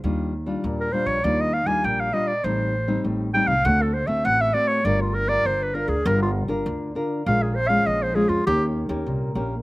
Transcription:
<<
  \new Staff \with { instrumentName = "Clarinet" } { \time 4/4 \key ees \major \tempo 4 = 100 r4 r16 bes'16 c''16 des''16 d''16 ees''16 f''16 aes''16 g''16 f''16 ees''16 d''16 | c''4 r8 g''16 f''16 fis''16 a'16 c''16 fes''16 fis''16 fes''16 d''16 des''16 | d''16 f'16 bes'16 d''16 c''16 ces''16 bes'16 aes'16 bes'16 f'16 r4. | f''16 aes'16 c''16 f''16 ees''16 c''16 aes'16 f'16 g'8 r4. | }
  \new Staff \with { instrumentName = "Nylon-string guitar" } { \time 4/4 \key ees \major << { <g d' f'>8 r16 <g d' f'>8. <g d' f'>8 <g d' f'>8 r16 <g d' f'>8. <g d' f'>16 r16 | <g c' ees'>8 r16 <g c' ees'>8. <g c' ees'>16 r16 <a c' fis'>8 r16 <a c' fis'>8. <a c' fis'>8 | <d' f' bes'>8. <d' f' bes'>8. <d' f' bes'>16 r16 <d' f' bes'>8. <d' f' bes'>8. <d' f' bes'>8 | <aes des' f'>8 r16 <aes des' f'>8. <aes des' f'>8 <bes des' g'>8. <bes des' g'>8. <bes des' g'>16 r16 | } \\ { ees4 bes,4 ees4 bes,4 | a,4 a,4 d4 a,4 | g4 d4 g4 d4 | bes,4 f4 ees4 bes,4 | } >> }
  \new Staff \with { instrumentName = "Upright bass" } { \clef bass \time 4/4 \key ees \major ees,4 ees,8. bes,,16 ees,8. ees,16 bes,,8 r8 | a,,4 a,,8. c,16 d,8. d,16 a,,8 r8 | g,,4 g,,8. d,16 g,,8. g,,16 d,8 r8 | bes,,4 bes,,8. f,16 ees,8. ees,16 c,8 bes,,8 | }
>>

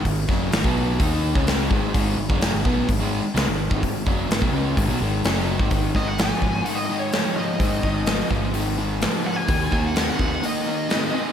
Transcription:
<<
  \new Staff \with { instrumentName = "Lead electric guitar" } { \time 4/4 \key gis \dorian \tempo 4 = 127 r1 | r1 | r1 | r8 dis''16 fis''16 gis''4 fis''16 dis''16 dis''16 cis''8. dis''8~ |
dis''4. r2 fis''16 gis''16~ | gis''8. fis''8 fis''8. dis''2 | }
  \new Staff \with { instrumentName = "Overdriven electric guitar" } { \clef bass \time 4/4 \key gis \dorian <gis, dis>8 <fis, cis fis>8 <gis, dis>16 <b, fis b>8. <dis ais dis'>8. <cis gis cis'>8. <gis, dis gis>8 | <gis, dis gis>8 <gis, dis>16 <fis, cis fis>8 <gis, dis>16 <b, fis b>8 <gis, dis>16 <gis, dis gis>8 r16 <cis gis>16 <gis, dis>8 <gis, dis>16 | <gis, dis>8 <fis, cis fis>8 <gis, dis>16 <b, fis>16 <cis gis cis'>8 <gis, dis>16 <b, fis>16 <gis, dis gis>8 <fis, cis fis>8. <gis, dis>16 | <gis, dis>8 <gis, dis>8 <gis, eis>8 <gis, eis>8 <gis, dis>8 <gis, dis>8 <gis, eis>8 <gis, eis>8 |
<gis, dis>8 <gis, dis>8 <gis, eis>8 <gis, eis>8 <gis, dis>8 <gis, dis>8 <gis, eis>8 <gis, eis>8 | <dis ais>8 <dis ais>8 <dis bis>8 <dis bis>8 <dis ais>8 <dis ais>8 <dis bis>8 <dis bis>8 | }
  \new Staff \with { instrumentName = "Overdriven electric guitar" } { \clef bass \time 4/4 \key gis \dorian <gis, dis>8 <fis, cis fis>8 <gis, dis>16 <b, fis b>8. <dis ais dis'>8. <cis gis cis'>8. <gis, dis gis>8 | <gis, dis gis>8 <gis, dis>16 <fis, cis fis>8 <gis, dis>16 <b, fis b>8 <gis, dis>16 <gis, dis gis>8 r16 <cis gis>16 <gis, dis>8 <gis, dis>16 | <gis, dis>8 <fis, cis fis>8 <gis, dis>16 <b, fis>16 <cis gis cis'>8 <gis, dis>16 <b, fis>16 <gis, dis gis>8 <fis, cis fis>8. <gis, dis>16 | <gis, dis>8 <gis, dis>8 <gis, eis>8 <gis, eis>8 <gis, dis>8 <gis, dis>8 <gis, eis>8 <gis, eis>8 |
<gis, dis>8 <gis, dis>8 <gis, eis>8 <gis, eis>8 <gis, dis>8 <gis, dis>8 <gis, eis>8 <gis, eis>8 | <dis ais>8 <dis ais>8 <dis bis>8 <dis bis>8 <dis ais>8 <dis ais>8 <dis bis>8 <dis bis>8 | }
  \new Staff \with { instrumentName = "Picked electric bass" } { \clef bass \time 4/4 \key gis \dorian gis,,8 fis,,8 gis,,16 b,,8. dis,8. cis,8. gis,,8 | gis,,8 gis,,16 fis,,8 gis,,16 b,,8 gis,,16 gis,,8 r16 cis,16 gis,,8 gis,,16 | gis,,8 fis,,8 gis,,16 b,,16 cis,8 gis,,16 b,,16 gis,,8 fis,,8. gis,,16 | gis,,8 gis,,4 gis,,8 r2 |
gis,8 gis,,4 gis,,2 r8 | dis,8 dis,4 dis,8 r2 | }
  \new DrumStaff \with { instrumentName = "Drums" } \drummode { \time 4/4 <hho bd>8 <bd sn>8 <hho sn>16 bd8. <hho bd>8. bd16 <hho sn>8 bd8 | <hho bd>8. bd16 <hho sn>8 bd8 <hho bd>4 <hho sn>8. bd16 | <hho bd>8 bd8 <hho sn>16 bd8. <hho bd>4 <hho sn>8. bd16 | <hho bd>8 <bd sn>8 <hho sn>8 bd8 hho4 <hho sn>4 |
<hho bd>8 bd8 <hho sn>8 bd8 hho4 <hho sn>4 | <hho bd>8 <bd sn>8 <hho sn>8 bd8 hho4 <hho sn>4 | }
>>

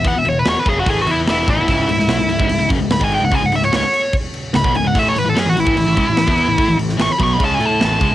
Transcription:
<<
  \new Staff \with { instrumentName = "Lead electric guitar" } { \time 4/4 \key cis \minor \tempo 4 = 147 fis''16 e''16 cis''16 b'16 cis''16 b'16 gis'16 fis'16 gis'16 fis'16 e'16 r16 e'8 e'8~ | e'2~ e'8 r8 b''16 gis''16 g''16 fis''16 | gis''16 fis''16 e''16 cis''16 cis''4 r4 b''8 gis''16 fis''16 | e''16 cis''16 b'16 a'16 gis'16 fis'16 e'2~ e'8~ |
e'8 r8 cis'''16 b''16 cis'''16 b''16 a''16 gis''16 a''8 a''4 | }
  \new Staff \with { instrumentName = "Distorted electric guitar" } { \clef bass \time 4/4 \key cis \minor <e b>16 <e, b,>16 <e, b,>8 <e, b,>16 r16 <fis, cis fis>8 <a, e a>8 <e b e'>8 <e, b, e>8 <a, e>16 <e, b,>16 | <cis, gis, cis>8 <cis, gis,>16 <cis, gis,>16 <b, fis>16 <cis, gis,>16 <cis, gis,>16 <cis, gis,>16 <cis, gis,>16 <cis, gis,>16 <fis, cis>16 <cis, gis,>16 <cis, gis,>16 <gis, dis gis>8 <cis, gis,>16 | <cis gis>16 <cis, gis,>16 <cis, gis,>8 <cis, gis,>16 r4. r16 <cis, gis,>16 <b, fis>16 <cis, gis,>16 <cis, gis,>16 | <a, e a>8 <a, e>16 <a, e>16 <fis cis'>16 <a, e>16 <a, e>16 <a, e>16 <a, e>16 <a, e>16 <cis gis>16 <a, e>16 <a, e>16 <e b e'>8 <a, e>16 |
<a e'>16 <a, e>16 <a, e>8 <a, e>16 r16 <b, fis b>8 <cis gis cis'>8 <a e' a'>8 <a, e a>8 <cis gis>16 a,16 | }
  \new Staff \with { instrumentName = "Distorted electric guitar" } { \clef bass \time 4/4 \key cis \minor r1 | <cis, gis, cis>8 <cis, gis,>16 <cis, gis,>16 <b, fis>16 <cis, gis,>16 <cis, gis,>16 <cis, gis,>16 <cis, gis,>16 <cis, gis,>16 <fis, cis>16 <cis, gis,>16 <cis, gis,>16 <gis, dis gis>8 <cis, gis,>16 | <cis gis>16 <cis, gis,>16 <cis, gis,>8 <cis, gis,>16 r4. r16 <cis, gis,>16 <b, fis>16 <cis, gis,>16 <cis, gis,>16 | <a, e a>8 <a, e>16 <a, e>16 <fis cis'>16 <a, e>16 <a, e>16 <a, e>16 <a, e>16 <a, e>16 <cis gis>16 <a, e>16 <a, e>16 <e b e'>8 <a, e>16 |
<a e'>16 <a, e>16 <a, e>8 <a, e>16 r16 <b, fis b>8 <cis gis cis'>8 <a e' a'>8 <a, e a>8 <cis gis>16 <a, e>16 | }
  \new Staff \with { instrumentName = "Picked electric bass" } { \clef bass \time 4/4 \key cis \minor e,16 e,,16 e,,8 e,,16 r16 fis,,8 a,,8 e,8 e,,8 a,,16 e,,16 | cis,,8 cis,,16 cis,,16 b,,16 cis,,16 cis,,16 cis,,16 cis,,16 cis,,16 fis,,16 cis,,16 cis,,16 gis,,8 cis,,16 | cis,16 cis,,16 cis,,8 cis,,16 r4. r16 cis,,16 b,,16 cis,,16 cis,,16 | a,,8 a,,16 a,,16 fis,16 a,,16 a,,16 a,,16 a,,16 a,,16 cis,16 a,,16 a,,16 e,8 a,,16 |
a,16 a,,16 a,,8 a,,16 r16 b,,8 cis,8 a,8 a,,8 cis,16 a,,16 | }
  \new DrumStaff \with { instrumentName = "Drums" } \drummode { \time 4/4 <cymc bd>8 cymc8 <cymc sn>8 <cymc bd>8 <cymc bd>8 cymc8 <cymc sn>8 <cymc bd>8 | <cymc bd>8 cymc16 sn16 <cymc sn>8 cymc16 bd16 cymc8 <cymc bd>8 <cymc sn>16 bd16 cymc8 | <cymc bd>8 cymc16 sn16 <cymc sn>8 cymc8 <cymc bd>8 cymc8 <cymc sn>16 bd16 cymc8 | <cymc bd>8 cymc8 <cymc sn>8 cymc16 bd16 cymc8 <cymc bd>8 <cymc sn>16 bd16 cymc8 |
<cymc bd>8 cymc16 sn16 <cymc sn>8 <cymc bd>8 <cymc bd>8 cymc8 <cymc sn>8 <cymc bd>8 | }
>>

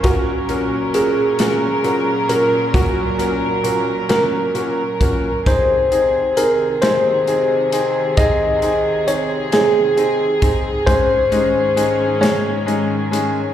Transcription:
<<
  \new Staff \with { instrumentName = "Tine electric piano" } { \time 6/8 \key ges \lydian \tempo 4. = 44 ges'4 aes'4. bes'8 | ges'4. bes'4. | c''4 bes'8 c''4. | ees''4 des''8 aes'4. |
c''4. des''4. | }
  \new Staff \with { instrumentName = "Upright piano" } { \time 6/8 \key ges \lydian <bes, des' ges' bes'>8 <bes, des' ges' bes'>8 <bes, des' ges' bes'>8 <bes, des' ges' bes'>8 <bes, des' ges' bes'>8 <bes, des' ges' bes'>8 | <bes, des' ges' bes'>8 <bes, des' ges' bes'>8 <bes, des' ges' bes'>8 <bes, des' ges' bes'>8 <bes, des' ges' bes'>8 <bes, des' ges' bes'>8 | <c' ees' aes'>8 <c' ees' aes'>8 <c' ees' aes'>8 <c' ees' aes'>8 <c' ees' aes'>8 <c' ees' aes'>8 | <c' ees' aes'>8 <c' ees' aes'>8 <c' ees' aes'>8 <c' ees' aes'>8 <c' ees' aes'>8 <c' ees' aes'>8 |
<aes des' ees' aes'>8 <aes des' ees' aes'>8 <aes des' ees' aes'>8 <aes des' ees' aes'>8 <aes des' ees' aes'>8 <aes des' ees' aes'>8 | }
  \new Staff \with { instrumentName = "String section" } { \clef bass \time 6/8 \key ges \lydian << { bes'2.~ | bes'2. | aes'2.~ | aes'2.~ |
aes'2. | } \\ { <bes, ges des'>2.~ | <bes, ges des'>2. | <c ees>2.~ | <c ees>2. |
<aes, ees des'>2. | } >> }
  \new DrumStaff \with { instrumentName = "Drums" } \drummode { \time 6/8 <hh bd>8 hh8 hh8 <hh sn>8 hh8 hh8 | <hh bd>8 hh8 hh8 <hh sn>8 hh8 <hh bd>8 | <hh bd>8 hh8 hh8 <hh sn>8 hh8 hh8 | <hh bd>8 hh8 hh8 <hh sn>8 hh8 <hh bd>8 |
<hh bd>8 hh8 hh8 <hh sn>8 hh8 hh8 | }
>>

